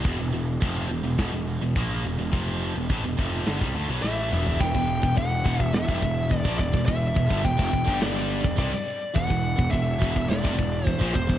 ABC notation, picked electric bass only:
X:1
M:4/4
L:1/16
Q:1/4=106
K:Em
V:1 name="Picked electric bass" clef=bass
E,,, E,,, E,,,2 =F,,,2 E,,, E,,, E,,, E,,,2 E,,, ^A,,,2 E,,, E,,, | =F,,,3 E,,, A,,, E,,, F,,,2 G,,, C,, D,, B,,, A,,,2 E,,,2 | E,,, E,,,2 E,,, E,,,2 E,,, E,,, E,,, =F,,, E,,,2 E,,, ^A,,, E,,, E,,, | E,,,2 E,,, G,,, E,,, =F,,, E,,, G,,,4 E,,, C,, z3 |
E,,, E,,,2 E,,, E,,,2 E,,, E,,, E,,, =F,,, E,,,2 E,,, ^A,,, E,,, E,,, |]